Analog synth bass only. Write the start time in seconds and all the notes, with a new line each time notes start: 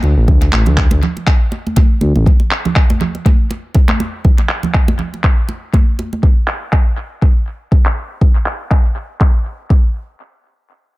0.03 D2
0.17 A1
0.28 D2
0.53 A1
0.67 D2
0.92 D2
2.02 D2
2.16 A1